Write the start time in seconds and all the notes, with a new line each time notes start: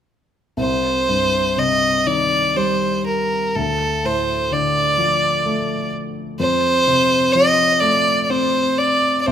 0.57 C2 C5
1.08 G2
1.57 C3 D#5
2.06 D#3 D5
2.56 G3 C5
3.07 A#4
3.56 D2 A4
4.04 A2 C5
4.52 D3 D5
4.98 F3
5.46 A3
6.40 F2 C5
6.87 C3
7.32 F3 D#5
7.80 A3 D5
8.24 D5
8.30 C4 C5
8.78 D5
9.21 D5
9.26 C2 C5